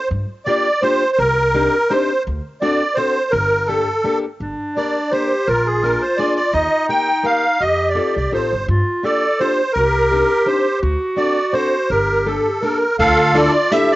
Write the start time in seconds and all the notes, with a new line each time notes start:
0.11 G2
0.46 A#3 D4 F4 G4 D5
0.82 A#3 D4 F4 G4 C5
1.12 C5
1.18 C2 A#4
1.54 C4 D4 D#4 G4
1.89 C4 D4 D#4 G4 C5
2.27 D2
2.61 C4 D4 F#4 A4 D5
2.95 C4 D4 F#4 A4 C5
3.31 G1 A#4
3.66 A#3 D4 G4 A4
4.04 A#3 D4 G4 A4
4.40 G1 D4
4.76 A#3 D4 G4 A#4 D5
5.11 A#3 D4 G4 A#4 C5
5.47 A#1 F4 A#4
5.66 G#4
5.82 A#3 D4 F4 G#4 A#4
6.02 C5
6.17 A#3 D4 F4 G#4 D5
6.36 D5
6.53 D#2 D#4 D#5
6.89 A#3 D#4 G4 A#4 G5
7.23 A#3 D#4 G4 A#4 F5
7.60 F2 G4 D#5
7.89 D5
7.95 C4 D#4 F4 A4
8.16 C2 D5
8.32 A1 C4 D#4 F4 A4 C5
8.53 G1
8.68 G2 F4
9.03 A#3 D4 F4 G4 A4 D5
9.40 A#3 D4 F4 G4 C5
9.73 C2 G4 A#4
10.11 C4 D4 D#4 G4
10.46 C4 D4 D#4 G4 C5
10.82 D2 F#4
11.16 C4 D4 F#4 A4 D5
11.53 C4 D4 F#4 A4 C5
11.90 G1 G4 A#4
12.26 A#3 D4 G4 A4
12.62 A#3 D4 G4 A4 A#4
12.99 D2 F4 A4 F5, kick, ride
13.35 D4 E4 F4 A4 D5, ride
13.71 D4 E4 F4 G4 A4 E5, snare, ride
13.91 D5